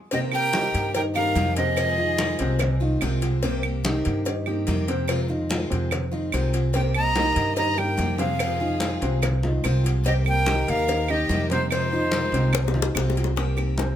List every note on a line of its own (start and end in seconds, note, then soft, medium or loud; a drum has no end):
0.11 0.31 C3 medium
0.11 0.46 C3 medium
0.11 0.32 D#3 medium
0.11 0.32 A#3 medium
0.11 0.46 C4 medium
0.11 0.32 C4 medium
0.11 0.22 G4 medium
0.11 0.31 G4 medium
0.11 0.46 C5 medium
0.11 0.19 D#5 medium
0.11 cowbell loud
0.11 high conga soft
0.32 0.52 A#3 soft
0.32 0.53 C4 soft
0.32 0.52 G4 medium
0.32 0.91 A#4 loud
0.32 0.92 G5 loud
0.32 high conga soft
0.32 claves medium
0.52 0.93 C3 medium
0.52 0.93 D#3 medium
0.52 0.88 D#3 medium
0.52 0.93 A#3 medium
0.52 0.94 C4 medium
0.52 0.88 D#4 medium
0.52 0.94 G4 medium
0.52 0.88 G4 medium
0.52 cowbell medium
0.52 high conga loud
0.74 1.32 G2 medium
0.74 cowbell medium
0.74 high conga soft
0.94 1.12 D#3 medium
0.94 1.12 D#4 medium
0.94 1.12 G4 medium
0.94 1.05 A#4 medium
0.94 1.02 G5 loud
0.94 muted steel-string acoustic guitar stroke medium
0.94 cowbell loud
0.94 high conga soft
1.14 1.50 D#3 medium
1.14 1.35 A#3 soft
1.14 1.35 C4 soft
1.14 1.50 D#4 medium
1.14 1.34 G4 medium
1.14 1.50 G4 medium
1.14 1.54 A#4 medium
1.14 1.54 F5 loud
1.14 high conga soft
1.14 claves medium
1.35 2.33 F2 medium
1.35 1.56 C3 medium
1.35 1.56 D#3 medium
1.35 1.56 A#3 medium
1.35 1.56 C4 medium
1.35 1.54 G4 medium
1.35 cowbell medium
1.35 high conga medium
1.56 1.91 C3 medium
1.56 1.77 A#3 soft
1.56 1.77 C4 medium
1.56 1.92 C4 medium
1.56 1.76 G4 medium
1.56 2.77 G#4 medium
1.56 1.92 C5 medium
1.56 2.77 D#5 loud
1.56 cowbell medium
1.76 1.97 C3 medium
1.76 1.97 D#3 medium
1.76 1.97 G#3 medium
1.76 1.97 C4 medium
1.76 1.96 F4 medium
1.76 cowbell loud
1.76 high conga soft
1.76 claves medium
1.97 2.32 D#3 medium
1.97 2.17 G#3 soft
1.97 2.18 C4 medium
1.97 2.33 D#4 medium
1.97 2.18 F4 medium
1.97 2.33 F4 medium
1.97 high conga soft
2.17 2.57 C3 medium
2.17 2.58 D#3 medium
2.17 2.58 G#3 medium
2.17 2.58 C4 medium
2.17 2.58 F4 medium
2.17 cowbell medium
2.17 high conga loud
2.39 2.98 C2 medium
2.39 2.74 C3 medium
2.39 2.74 C4 medium
2.39 2.74 C5 medium
2.39 cowbell medium
2.39 high conga soft
2.59 muted steel-string acoustic guitar stroke medium
2.59 cowbell loud
2.59 high conga soft
2.59 low conga medium
2.59 claves medium
2.80 2.98 D#3 medium
2.80 3.01 G#3 soft
2.80 3.01 C4 medium
2.80 2.98 D#4 medium
2.80 3.00 F4 medium
2.80 2.98 F4 medium
2.80 high conga soft
3.01 3.99 C2 medium
3.01 3.21 C3 medium
3.01 3.36 C3 medium
3.01 3.22 D#3 medium
3.01 3.22 G#3 medium
3.01 3.36 C4 medium
3.01 3.21 C4 medium
3.01 3.20 F4 medium
3.01 3.36 C5 medium
3.01 cowbell medium
3.01 high conga soft
3.01 claves medium
3.21 3.43 G#3 soft
3.21 3.42 C4 soft
3.21 3.42 F4 medium
3.21 cowbell medium
3.21 high conga soft
3.42 3.63 C3 medium
3.42 3.77 C3 medium
3.42 3.63 D#3 medium
3.42 3.63 A#3 medium
3.42 3.77 C4 medium
3.42 3.63 C4 medium
3.42 3.62 G4 medium
3.42 3.77 C5 medium
3.42 cowbell loud
3.42 high conga soft
3.63 3.84 A#3 soft
3.63 3.84 C4 soft
3.63 3.84 G4 medium
3.63 high conga soft
3.63 claves medium
3.84 4.24 C3 medium
3.84 4.18 D#3 medium
3.84 4.24 D#3 medium
3.84 4.24 A#3 medium
3.84 4.25 C4 medium
3.84 4.19 D#4 medium
3.84 4.19 G4 medium
3.84 4.25 G4 medium
3.84 cowbell medium
3.84 high conga loud
4.05 4.64 G2 loud
4.05 cowbell medium
4.05 high conga soft
4.25 4.43 D#3 medium
4.25 4.43 D#4 medium
4.25 4.43 G4 medium
4.25 muted steel-string acoustic guitar stroke medium
4.25 cowbell loud
4.25 high conga soft
4.46 4.80 D#3 medium
4.46 4.67 A#3 soft
4.46 4.67 C4 soft
4.46 4.81 D#4 medium
4.46 4.66 G4 medium
4.46 4.81 G4 medium
4.46 high conga soft
4.46 claves medium
4.67 5.65 F2 medium
4.67 4.87 C3 medium
4.67 4.87 D#3 medium
4.67 4.87 A#3 medium
4.67 4.88 C4 medium
4.67 4.86 G4 medium
4.67 cowbell medium
4.67 high conga medium
4.88 5.22 C3 medium
4.88 5.08 A#3 soft
4.88 5.08 C4 soft
4.88 5.22 C4 medium
4.88 5.08 G4 medium
4.88 5.23 C5 medium
4.88 cowbell medium
5.08 5.28 C3 medium
5.08 5.28 D#3 medium
5.08 5.29 G#3 medium
5.08 5.28 C4 medium
5.08 5.27 F4 medium
5.08 cowbell loud
5.08 high conga soft
5.08 claves medium
5.28 5.63 D#3 medium
5.28 5.49 G#3 soft
5.28 5.49 C4 soft
5.28 5.63 D#4 medium
5.28 5.49 F4 medium
5.28 5.64 F4 medium
5.28 high conga soft
5.49 5.90 C3 medium
5.49 5.90 D#3 medium
5.49 5.90 G#3 medium
5.49 5.91 C4 medium
5.49 5.91 F4 medium
5.49 cowbell medium
5.49 high conga loud
5.70 6.29 F2 medium
5.70 6.04 C3 medium
5.70 6.05 C4 medium
5.70 6.05 C5 medium
5.70 cowbell medium
5.70 high conga soft
5.91 muted steel-string acoustic guitar stroke medium
5.91 cowbell loud
5.91 high conga soft
5.91 low conga medium
5.91 claves medium
6.11 6.29 D#3 medium
6.11 6.32 G#3 soft
6.11 6.32 C4 soft
6.11 6.29 D#4 medium
6.11 6.32 F4 soft
6.11 6.29 F4 medium
6.11 high conga soft
6.32 7.30 C2 medium
6.32 6.52 C3 medium
6.32 6.67 C3 medium
6.32 6.53 D#3 medium
6.32 6.53 G#3 medium
6.32 6.67 C4 medium
6.32 6.53 C4 loud
6.32 6.52 F4 medium
6.32 6.67 C5 medium
6.32 cowbell medium
6.32 high conga soft
6.32 claves medium
6.53 6.73 G#3 soft
6.53 6.73 C4 soft
6.53 6.73 F4 medium
6.53 cowbell medium
6.53 high conga soft
6.73 6.93 C3 medium
6.73 7.09 C3 medium
6.73 6.94 D#3 medium
6.73 6.94 A#3 medium
6.73 6.94 C4 medium
6.73 7.09 C4 medium
6.73 6.93 G4 medium
6.73 6.85 A#4 medium
6.73 7.09 C5 medium
6.73 6.81 G5 medium
6.73 cowbell loud
6.73 high conga soft
6.94 7.15 A#3 soft
6.94 7.15 C4 soft
6.94 7.15 G4 medium
6.94 7.53 D#5 medium
6.94 7.53 A#5 loud
6.94 high conga soft
6.94 claves medium
7.15 7.55 C3 medium
7.15 7.56 D#3 medium
7.15 7.50 D#3 medium
7.15 7.56 A#3 medium
7.15 7.56 C4 medium
7.15 7.50 D#4 medium
7.15 7.56 G4 medium
7.15 7.50 G4 medium
7.15 cowbell medium
7.15 high conga loud
7.36 7.94 G2 loud
7.36 cowbell medium
7.36 high conga soft
7.56 7.74 D#3 medium
7.56 7.75 D#4 medium
7.56 7.75 G4 medium
7.56 7.76 D#5 medium
7.56 7.80 A#5 loud
7.56 muted steel-string acoustic guitar stroke medium
7.56 cowbell loud
7.56 high conga soft
7.76 8.11 D#3 medium
7.76 7.97 A#3 soft
7.76 7.97 C4 soft
7.76 8.12 D#4 medium
7.76 7.97 G4 soft
7.76 8.12 G4 medium
7.76 8.18 A#4 medium
7.76 8.19 G5 loud
7.76 high conga soft
7.76 claves medium
7.97 8.96 F2 medium
7.97 8.18 C3 medium
7.97 8.18 D#3 medium
7.97 8.18 A#3 medium
7.97 8.18 C4 medium
7.97 8.17 G4 medium
7.97 cowbell medium
7.97 high conga medium
8.18 8.53 C3 medium
8.18 8.39 A#3 soft
8.18 8.53 C4 medium
8.18 8.39 C4 soft
8.18 8.38 G4 medium
8.18 9.39 G#4 medium
8.18 8.53 C5 loud
8.18 9.39 F5 loud
8.18 cowbell medium
8.18 high conga medium
8.39 8.59 C3 medium
8.39 8.59 D#3 medium
8.39 8.60 G#3 medium
8.39 8.60 C4 medium
8.39 8.59 F4 medium
8.39 cowbell loud
8.39 high conga soft
8.39 claves medium
8.60 8.94 D#3 medium
8.60 8.80 G#3 soft
8.60 8.80 C4 soft
8.60 8.95 D#4 medium
8.60 8.80 F4 medium
8.60 8.95 F4 medium
8.60 high conga soft
8.80 9.21 C3 medium
8.80 9.21 D#3 medium
8.80 9.21 G#3 medium
8.80 9.22 C4 medium
8.80 9.22 F4 medium
8.80 cowbell medium
8.80 high conga loud
9.01 9.60 C2 loud
9.01 9.36 C3 medium
9.01 9.36 C4 medium
9.01 9.36 C5 medium
9.01 cowbell medium
9.01 high conga soft
9.22 muted steel-string acoustic guitar stroke medium
9.22 cowbell loud
9.22 high conga soft
9.22 low conga medium
9.22 claves medium
9.43 9.61 D#3 medium
9.43 9.63 G#3 soft
9.43 9.63 C4 soft
9.43 9.61 D#4 medium
9.43 9.63 F4 medium
9.43 9.61 F4 medium
9.43 high conga soft
9.43 low conga medium
9.63 10.61 C2 medium
9.63 9.98 C3 medium
9.63 9.84 C3 medium
9.63 9.84 D#3 medium
9.63 9.84 G#3 medium
9.63 9.98 C4 medium
9.63 9.84 C4 medium
9.63 9.83 F4 medium
9.63 9.98 C5 medium
9.63 cowbell medium
9.63 high conga soft
9.63 claves medium
9.84 10.04 G#3 soft
9.84 10.04 C4 soft
9.84 10.04 F4 soft
9.84 cowbell medium
9.84 high conga soft
10.04 10.24 C3 medium
10.04 10.39 C3 medium
10.04 10.25 D#3 medium
10.04 10.25 A#3 medium
10.04 10.39 C4 medium
10.04 10.25 C4 medium
10.04 10.23 G4 medium
10.04 10.15 G4 medium
10.04 10.39 C5 medium
10.04 10.13 D#5 loud
10.04 cowbell loud
10.04 high conga soft
10.24 10.46 A#3 soft
10.24 10.46 C4 soft
10.24 10.45 G4 medium
10.24 10.65 A#4 medium
10.24 10.71 G5 loud
10.24 high conga soft
10.24 claves medium
10.46 10.87 C3 medium
10.46 10.87 D#3 medium
10.46 10.81 D#3 medium
10.46 10.87 A#3 medium
10.46 10.87 C4 medium
10.46 10.81 D#4 medium
10.46 10.81 G4 medium
10.46 10.87 G4 medium
10.46 cowbell medium
10.46 high conga loud
10.67 11.26 D#2 loud
10.67 11.10 A#4 loud
10.67 11.12 F5 loud
10.67 cowbell medium
10.67 high conga soft
10.88 11.05 D#3 medium
10.88 11.05 D#4 medium
10.88 11.05 G4 medium
10.88 muted steel-string acoustic guitar stroke medium
10.88 cowbell loud
10.88 high conga soft
11.08 11.43 D#3 medium
11.08 11.28 A#3 soft
11.08 11.29 C4 soft
11.08 11.43 D#4 medium
11.08 11.29 G4 medium
11.08 11.43 G4 medium
11.08 11.51 G4 medium
11.08 11.49 D#5 medium
11.08 high conga soft
11.08 claves medium
11.29 12.27 F2 medium
11.29 11.49 C3 medium
11.29 11.50 D#3 medium
11.29 11.50 A#3 medium
11.29 11.50 C4 medium
11.29 11.48 G4 medium
11.29 cowbell medium
11.29 high conga medium
11.50 11.85 C3 medium
11.50 11.71 A#3 soft
11.50 11.70 C4 soft
11.50 11.85 C4 medium
11.50 11.70 D#4 medium
11.50 11.70 G4 soft
11.50 11.69 C5 loud
11.50 11.85 C5 medium
11.50 cowbell medium
11.50 high conga medium
11.70 11.91 C3 medium
11.70 11.91 D#3 medium
11.70 11.91 G#3 medium
11.70 11.92 C4 medium
11.70 12.92 D#4 medium
11.70 11.91 F4 medium
11.70 12.91 C5 medium
11.70 cowbell loud
11.70 high conga soft
11.70 claves medium
11.91 12.26 D#3 medium
11.91 12.12 G#3 soft
11.91 12.12 C4 soft
11.91 12.26 D#4 medium
11.91 12.12 F4 soft
11.91 12.27 F4 medium
11.91 high conga soft
12.12 12.53 C3 medium
12.12 12.53 D#3 medium
12.12 12.53 G#3 medium
12.12 12.54 C4 medium
12.12 12.54 F4 medium
12.12 cowbell medium
12.12 high conga loud
12.32 12.91 C2 medium
12.32 12.67 C3 medium
12.32 12.67 C4 medium
12.32 12.68 C5 medium
12.32 cowbell medium
12.32 high conga soft
12.53 muted steel-string acoustic guitar stroke medium
12.53 cowbell loud
12.53 high bongo medium
12.53 high conga soft
12.53 low conga medium
12.53 claves medium
12.68 low bongo loud
12.74 12.92 D#3 medium
12.74 12.95 G#3 soft
12.74 12.95 C4 soft
12.74 12.92 D#4 medium
12.74 12.95 F4 soft
12.74 12.92 F4 medium
12.74 high conga soft
12.74 low conga medium
12.82 low bongo loud
12.95 13.93 C2 medium
12.95 13.15 C3 medium
12.95 13.29 C3 medium
12.95 13.15 D#3 medium
12.95 13.16 G#3 medium
12.95 13.29 C4 medium
12.95 13.16 C4 medium
12.95 13.14 F4 medium
12.95 13.29 C5 medium
12.95 cowbell medium
12.95 low bongo medium
12.95 high conga soft
12.95 claves medium
13.10 low bongo medium
13.15 13.37 G#3 soft
13.15 13.37 C4 soft
13.15 13.36 F4 soft
13.15 cowbell medium
13.15 high conga soft
13.24 low bongo medium
13.36 13.57 C3 medium
13.36 13.71 C3 medium
13.36 13.57 D#3 medium
13.36 13.57 A#3 medium
13.36 13.71 C4 medium
13.36 13.56 C4 medium
13.36 13.55 G4 medium
13.36 13.71 C5 medium
13.36 high bongo medium
13.36 high conga soft
13.57 13.96 D#3 medium
13.57 13.96 A#3 medium
13.57 13.96 C4 medium
13.57 13.96 G4 medium
13.57 high bongo soft
13.57 high conga soft
13.57 claves medium
13.78 13.95 C3 medium
13.78 13.96 C4 medium
13.78 13.96 C5 medium
13.78 high bongo medium
13.78 high conga medium